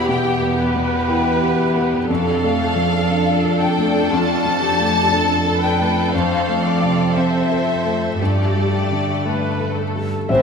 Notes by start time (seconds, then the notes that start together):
Already playing: E2 B2 B3 E4 G4
0.08 B2 G4 G5
0.42 B3
0.58 B3 B4
0.75 B2
1.09 E4 G4
1.42 G4
1.60 E4
1.76 B3
2.09 F2 D4 A4 F5
2.44 A3
2.61 A3
2.76 F3
3.10 D4 A4
3.44 A4
3.61 D4 G5
3.78 A3
4.10 F2 F4 A5
4.45 F3
4.62 A3 G4
4.80 A3
5.12 D4 A4
5.47 A4
5.63 D4 B4 G5
5.80 A3
6.13 F2 C4 C5 F5
6.49 A3
6.65 A3 D5
6.83 C3
7.15 C4 A4 C5 E5
7.52 A4
7.69 C4
7.86 A3
8.20 G2 A3 G4 A4 D5
8.56 G3
8.74 G3
8.91 D3
9.25 A3 A4 B4
9.60 A4
9.77 A3 A4
9.95 G3
10.29 A1 A2 E3 C4 C5 E5